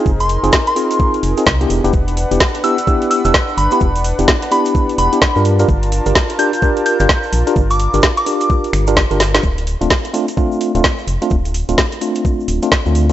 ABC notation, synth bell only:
X:1
M:4/4
L:1/16
Q:"Swing 16ths" 1/4=128
K:Gmix
V:1 name="Synth bell"
z c'2 z2 c'4 z6 z | z6 e'2 z2 e' e' z2 b b | z6 b2 z2 b4 z2 | z6 g'2 z2 g' g' z4 |
z d'2 z2 d'4 z6 z | z16 | z16 |]